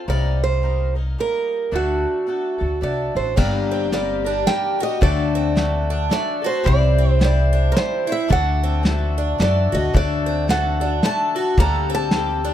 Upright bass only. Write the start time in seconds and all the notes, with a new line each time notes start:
0.08 C2
1.72 D2
2.61 D2
2.82 C2
3.15 A1
3.38 G1
5.02 D2
6.66 C2
8.30 D2
9.40 F#2
9.73 D2
9.94 D2
11.57 D2